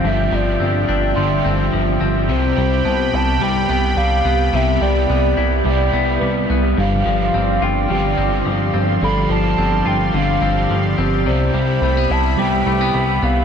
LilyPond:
<<
  \new Staff \with { instrumentName = "Celesta" } { \time 4/4 \key g \mixolydian \tempo 4 = 107 r2 c'''2~ | c'''8 r8 a''2. | r2 e''4 b'4~ | b'8 r4. g'2 |
a'2. r4 | d''4 b''4 d'''4 b''4 | }
  \new Staff \with { instrumentName = "Soft synth lead" } { \time 4/4 \key g \mixolydian e''8 d''2. r8 | c''4. a''8 g''4 f''4 | e''8 d''2. r8 | f''4. g''2 r8 |
b''8 a''4 g''8 f''4. r8 | c''4. a''8 g''4. f''8 | }
  \new Staff \with { instrumentName = "Analog synth pad" } { \time 4/4 \key g \mixolydian << { <e'' g''>1 | <g'' b''>1~ | <g'' b''>1 | <d'' f'' c'''>1~ |
<d'' f'' c'''>1 | <e'' b''>1 | } \\ { f'1 | g'1~ | g'1 | g'1~ |
g'1~ | g'1 | } >> }
  \new Staff \with { instrumentName = "Overdriven electric guitar" } { \time 4/4 \key g \mixolydian <g, d f c' d' g'>8 <f c' d' g'>4. <f c' d' g'>2 | <c g b e' g'>8 <e' g'>4. <g b g'>2 | <c g b e' g'>8 <b e' g'>4. <g b e' g'>2 | <g, d f c' d' g'>8 <f c' d' g'>4. <f c' d' g'>2 |
<g, d f c' d' g'>8 <f c' d' g'>4. <f c' d' g'>2 | <c g b e' g'>8 <e' g'>4. <g b e' g'>2 | }
  \new Staff \with { instrumentName = "Clean electric guitar" } { \time 4/4 \key g \mixolydian <g, d f c' d'>8 f8 c'8 d'8 d8 c'8 f8 c'8 | c8 g8 b4 g8 b8 g8 b8 | c8 g8 b8 e'8 g8 b8 g8 b8 | g,8 f8 c'8 f'8 d8 c'8 f8 c'8 |
g,8 f8 c'8 f'8 d8 c'8 f8 c'8 | c8 g8 a16 b16 e'8 g8 a16 b16 g8 b8 | }
  \new Staff \with { instrumentName = "Analog synth bass" } { \clef bass \time 4/4 \key g \mixolydian g,,8 g,,8 g,,8 g,,8 g,,8 g,,8 g,,8 g,,8 | c,8 c,8 c,8 c,8 c,8 c,8 c,8 c,8 | c,8 c,8 c,8 c,8 c,8 c,8 c,8 c,8 | g,,8 g,,8 g,,8 g,,8 g,,8 g,,8 g,,8 g,,8 |
g,,8 g,,8 g,,8 g,,8 g,,8 g,,8 g,,8 g,,8 | c,8 c,8 c,8 c,8 c,8 c,8 c,8 c,8 | }
>>